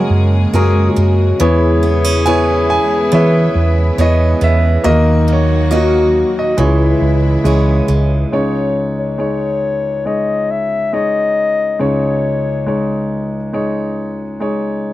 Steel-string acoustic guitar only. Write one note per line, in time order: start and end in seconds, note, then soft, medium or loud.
0.00 1.39 F#3 medium
0.00 0.52 A#3 medium
0.00 0.54 C#4 medium
0.00 0.54 G#4 medium
0.54 0.95 A#3 medium
0.54 1.49 C#4 medium
0.54 1.49 G#4 soft
0.96 1.48 A#3 medium
1.40 4.85 E3 medium
1.83 2.04 B3 medium
2.04 2.25 C#4 soft
2.26 3.10 B3 medium
2.26 3.98 C#4 medium
2.26 3.99 G#4 medium
3.12 3.97 B3 medium
3.98 4.40 B3 medium
3.98 4.94 C#4 medium
3.98 4.94 G#4 medium
4.41 4.84 B3 medium
4.84 5.70 A#3 medium
5.28 5.70 D#4 medium
5.71 6.67 A#3 medium
5.71 6.67 D#4 medium
5.71 6.67 F#4 medium
6.58 8.41 E3 medium
7.45 7.87 G#3 soft
7.45 8.41 C#4 soft
7.45 8.42 G#4 medium
7.88 8.41 G#3 medium